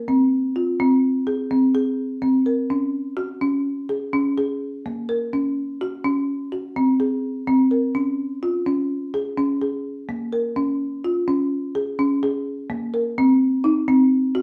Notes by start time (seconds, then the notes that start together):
0.08 C4
0.56 F4
0.80 C4
1.27 G#4
1.51 C4
1.75 G#4
2.22 C4
2.46 A#4
2.70 C#4
3.17 F#4
3.41 C#4
3.89 G#4
4.13 C#4
4.38 G#4
4.86 A#3
5.09 A#4
5.33 C#4
5.81 F#4
6.05 C#4
6.52 F#4
6.76 C4
7.00 G#4
7.47 C4
7.71 A#4
7.95 C#4
8.43 F4
8.66 C#4
9.14 G#4
9.38 C#4
9.61 G#4
10.09 A#3
10.33 A#4
10.56 C#4
11.04 F4
11.28 C#4
11.75 G#4
11.99 C#4
12.23 G#4
12.70 A#3
12.94 A#4
13.18 C4
13.64 D#4
13.88 C4
14.35 F#4